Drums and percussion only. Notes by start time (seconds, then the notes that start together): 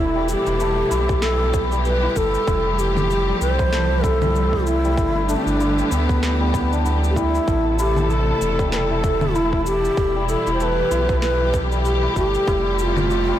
0.29 cabasa
0.47 cabasa
0.60 cabasa
0.91 cabasa
1.09 kick, cabasa
1.22 snare, cabasa
1.54 kick, cabasa
1.72 cabasa
1.85 cabasa
2.16 kick, cabasa
2.34 cabasa
2.47 kick, cabasa
2.79 cabasa
2.97 low conga, cabasa
3.11 cabasa
3.41 cabasa
3.59 kick, cabasa
3.73 snare, cabasa
4.04 kick, cabasa
4.22 low conga, cabasa
4.36 cabasa
4.53 kick
4.67 cabasa
4.85 cabasa
4.97 kick, cabasa
5.29 cabasa
5.47 cabasa
5.60 cabasa
5.78 cabasa
5.92 cabasa
6.09 kick, cabasa
6.23 snare, cabasa
6.54 kick, cabasa
6.73 cabasa
6.86 cabasa
7.04 cabasa
7.16 kick, cabasa
7.35 cabasa
7.48 kick, cabasa
7.79 cabasa
7.96 low conga, cabasa
8.10 cabasa
8.42 cabasa
8.59 kick, cabasa
8.72 snare, cabasa
9.04 kick, cabasa
9.21 low conga, cabasa
9.35 cabasa
9.53 kick
9.66 cabasa
9.85 cabasa
9.97 kick, cabasa
10.29 cabasa
10.47 cabasa
10.60 cabasa
10.91 cabasa
11.09 kick, cabasa
11.22 snare, cabasa
11.54 kick, cabasa
11.72 cabasa
11.85 cabasa
12.16 kick, cabasa
12.34 cabasa
12.48 kick, cabasa
12.79 cabasa
12.97 low conga, cabasa
13.10 cabasa